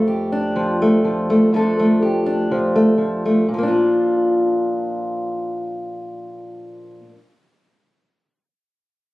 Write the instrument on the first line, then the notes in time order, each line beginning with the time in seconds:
steel-string acoustic guitar
Already playing: F2 A3 D4
0.08 G4
0.32 D4
0.56 F3
0.82 A3
1.05 F3
1.30 A3
1.53 F2 F3 A3 D4 A4
1.79 A3
2.02 G4
2.26 D4
2.51 F3
2.76 A3
2.98 F3
3.26 A3
3.49 A#2
3.54 F3
3.58 A#3
3.63 D4
3.68 F4